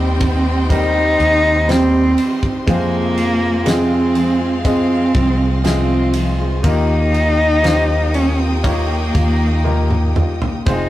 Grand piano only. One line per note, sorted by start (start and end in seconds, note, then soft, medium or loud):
0.00 0.17 D#3 medium
0.00 0.69 G3 medium
0.00 0.70 C4 medium
0.00 0.70 D#4 medium
0.00 0.70 G4 medium
0.00 1.69 C5 medium
0.69 1.64 G3 medium
0.69 1.64 C4 medium
0.69 1.64 D#4 medium
0.69 1.64 G4 medium
0.69 1.64 A#4 medium
1.68 2.62 G3 medium
1.68 2.62 C4 medium
1.68 2.62 D#4 medium
1.68 2.62 G4 medium
1.68 2.62 C5 medium
2.66 3.61 G#3 medium
2.66 3.61 C4 medium
2.66 3.61 F4 medium
2.66 3.61 G#4 medium
2.66 3.61 C5 medium
3.66 4.60 G#3 medium
3.66 4.60 C4 medium
3.66 4.60 F4 medium
3.66 4.60 G#4 medium
3.66 4.60 D#5 medium
4.64 5.59 G#3 medium
4.64 5.59 C4 medium
4.64 5.59 F4 medium
4.64 5.59 G#4 medium
4.64 5.59 D#5 medium
5.64 6.59 G#3 medium
5.64 6.59 C4 medium
5.64 6.59 F4 medium
5.64 6.59 G#4 medium
5.64 6.59 D#5 medium
6.63 8.09 D#3 medium
6.63 7.58 A#3 medium
6.63 7.58 D#4 medium
6.63 7.59 F4 medium
6.63 7.59 G4 medium
6.63 7.59 A#4 medium
7.63 8.59 A#3 medium
7.63 8.59 D#4 medium
7.63 8.59 F4 medium
7.63 8.59 G4 medium
7.63 8.59 C5 medium
8.63 9.60 A#3 medium
8.63 9.60 D#4 medium
8.63 9.60 F4 medium
8.63 9.60 G4 medium
8.63 9.60 C#5 medium
9.64 10.61 A#3 medium
9.64 10.61 D#4 medium
9.64 10.61 F4 medium
9.64 10.61 G4 medium
9.64 10.61 A#4 medium
10.66 10.89 G#3 medium
10.66 10.89 C4 medium
10.66 10.89 F4 medium
10.66 10.89 G#4 medium
10.66 10.89 C5 medium